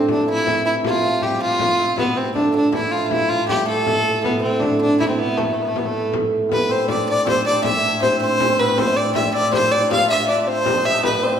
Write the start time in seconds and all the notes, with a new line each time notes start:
Already playing: A2 C3
0.08 D4, frame drum
0.20 F3
0.27 E3 E4, frame drum
0.47 frame drum
0.65 E3 E4
0.83 F3 F4, frame drum
1.01 F3, frame drum
1.20 G3 G4, frame drum
1.39 F3 F4, frame drum
1.59 frame drum
1.78 C3, frame drum
1.97 A2 B2 B3, frame drum
2.16 C3 C4, frame drum
2.35 D3 D4, frame drum
2.54 D3 D4, frame drum
2.73 E3 E4, frame drum
2.91 F3 F4
3.06 F4
3.11 E3 E4, frame drum
3.29 F3 F4, frame drum
3.48 G3 G4, frame drum
3.66 A3 A4, frame drum
3.87 frame drum
4.24 B2 B3, frame drum
4.41 C3 C4, frame drum
4.60 D3 D4, frame drum
4.81 D3 D4, frame drum
5.00 E3 E4, frame drum
5.08 C3 C4
5.19 B2 B3
5.37 A3, frame drum
5.44 B3
5.53 A3
5.58 frame drum
5.62 B3
5.69 A3
5.76 B3, frame drum
5.85 A2 A3
5.95 frame drum
6.13 frame drum
6.33 frame drum
6.49 A2 B3 B4, frame drum
6.69 C4 C5
6.87 D4 D5, frame drum
7.06 D4 D5
7.24 C4 C5, frame drum
7.44 D4 D5, frame drum
7.63 E4 E5, frame drum
7.83 D4
8.02 C4 C5, frame drum
8.19 C4 C5
8.38 C4 C5, frame drum
8.58 B3 B4, frame drum
8.77 C4 C5, frame drum
8.88 E5
8.95 D5
9.15 E4 E5, frame drum
9.33 D4 D5
9.52 C4 C5, frame drum
9.71 D4 D5, frame drum
9.89 F4 F5, frame drum
10.08 E5, frame drum
10.28 D4 D5
10.40 D5
10.46 C4 C5, frame drum
10.64 D4, frame drum
10.78 D4
10.85 E5, frame drum
10.91 D4
11.03 A2 B3 B4, frame drum
11.22 C4 C5
11.26 C5 D5